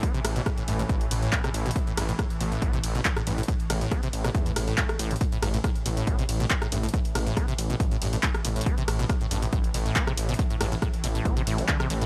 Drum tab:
RD |----x-------x-------x-------x---|----x-------x-------x-------x---|----x-------x-------x-------x---|----x-------x-------x-------x---|
HH |x-x-o-x-x-x-o-x-x-x-o-x-x-x-o-xx|x-x-o-x-x-x-o-x-x-x-o-x-x-x-o-xx|x-x-o-x-x-x-o-x-x-x-o-o-x-x-o-xx|x-x-o-x-x-x-o-x-x-x-o-x-x-x-o-xx|
CP |------------------------x-------|------------------------x-------|------------------------x-------|------------------------x-------|
SD |----r---r-----------------r-----|----r---r-----------------r-----|----r---r-----r-----r-----r-----|----r---r-----------------r-----|
BD |o-------o-------o-------o-------|o-------o-------o-------o-------|o-------o-------o-------o-------|o-------o-------o-------o-------|

RD |----x-------x-------x-------x---|----x-------x-------x-------x---|----x-------x-------x-------x---|
HH |x-x-o-x-x-x-o-x-x-x-o-x-x-x-o-xx|x-x-o-x-x-x-o-x-x-x-o-x-x-x-o-xx|x-x-o-x-x-x-o-x-x-x-o-o-x-x-o-x-|
CP |------------------------x-------|------------------------x-------|------------------------x-------|
SD |----r---r-----------------r-----|----r---r-----------------r-----|----r---r-----------------r-----|
BD |o-------o-------o-------o-------|o-------o-------o-------o-------|o-------o-------o-------o-------|